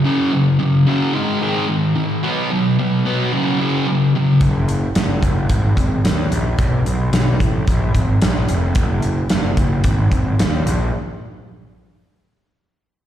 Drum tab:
HH |--------|--------|xxxxxxxx|xxxxxxxx|
SD |--------|--------|--o---o-|--o---o-|
BD |--------|--------|o--ooo--|o--ooo--|

HH |xxxxxxxx|--------|
SD |--o---o-|--------|
BD |o--ooo--|--------|